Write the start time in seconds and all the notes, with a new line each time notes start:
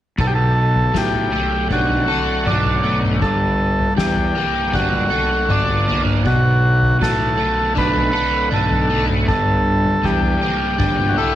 0.18 B1 B2 A4, kick, floor tom
0.27 G4
0.35 A4
0.76 floor tom
0.93 A2 F#3, kick, snare
0.98 G4
1.14 floor tom
1.32 A3
1.71 B1 D4 F#4, kick
1.90 floor tom
2.08 A4
2.46 B1 D4, mid tom
2.65 floor tom
2.83 A3
3.04 mid tom
3.21 G1 G2 A4, kick, floor tom
3.80 floor tom
3.97 E2 G3 G4, kick, snare
4.17 floor tom
4.35 A#3
4.72 G1 D4 F#4, kick
4.93 floor tom
5.10 A4
5.48 G1 D4, mid tom
5.69 floor tom
5.87 A#3
6.06 mid tom
6.24 B1 B2 F#4, kick, floor tom
6.82 floor tom
7.00 A2 F#3 A4, kick, snare
7.20 floor tom
7.37 A3
7.75 B1 D4 B4, kick
7.96 floor tom
8.13 A4
8.51 B1 D4 A4, mid tom
8.71 floor tom
8.90 A3
9.10 mid tom
9.28 G1 G2 A4, kick, floor tom
9.85 floor tom
10.03 E2 G3 G4, kick
10.23 floor tom
10.41 A#3
10.78 G1 D4 G4, kick, mid tom
10.99 floor tom
11.09 F#4
11.17 E4 A4